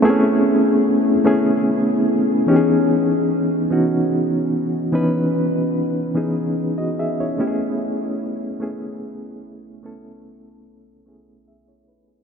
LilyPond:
\new Staff \with { instrumentName = "Reed electric piano" } { \time 6/8 \key cis \minor \tempo 4. = 49 << { r2. | r2. | r2 r16 <fis' dis''>16 <gis' e''>16 <e' cis''>16~ | <e' cis''>16 r2 r8. |
r2 <gis' e''>16 <e' cis''>16 <dis' b'>16 <b gis'>16 | } \\ { <a b bis cis' e' gis'>4. <a b cis' e' gis'>4. | <e b cis' dis' g' gis'>4. <e b cis' dis' fis'>4. | <e b cis' dis' b'>4. <e b cis' dis' gis'>4. | <a b cis' e' g' gis'>4. <a b cis' e' gis'>4. |
<a b cis' e' a'>4. <a b cis' e' gis'>4. | } >> }